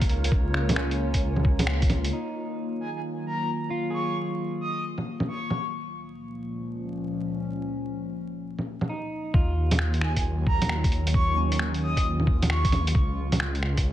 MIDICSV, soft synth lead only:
0, 0, Header, 1, 2, 480
1, 0, Start_track
1, 0, Key_signature, -6, "minor"
1, 0, Tempo, 451128
1, 338, Time_signature, 4, 2, 24, 8
1, 14818, End_track
2, 0, Start_track
2, 0, Title_t, "Soft synth lead"
2, 0, Program_c, 0, 80
2, 2983, Note_on_c, 0, 80, 80
2, 3082, Note_off_c, 0, 80, 0
2, 3147, Note_on_c, 0, 80, 70
2, 3194, Note_off_c, 0, 80, 0
2, 3471, Note_on_c, 0, 82, 91
2, 3721, Note_off_c, 0, 82, 0
2, 4184, Note_on_c, 0, 85, 90
2, 4437, Note_off_c, 0, 85, 0
2, 4902, Note_on_c, 0, 87, 86
2, 5156, Note_off_c, 0, 87, 0
2, 5618, Note_on_c, 0, 85, 82
2, 6017, Note_off_c, 0, 85, 0
2, 10669, Note_on_c, 0, 80, 86
2, 10765, Note_off_c, 0, 80, 0
2, 10833, Note_on_c, 0, 80, 75
2, 10877, Note_off_c, 0, 80, 0
2, 11141, Note_on_c, 0, 82, 97
2, 11395, Note_off_c, 0, 82, 0
2, 11852, Note_on_c, 0, 85, 93
2, 12111, Note_off_c, 0, 85, 0
2, 12584, Note_on_c, 0, 87, 90
2, 12837, Note_off_c, 0, 87, 0
2, 13296, Note_on_c, 0, 85, 92
2, 13696, Note_off_c, 0, 85, 0
2, 14818, End_track
0, 0, End_of_file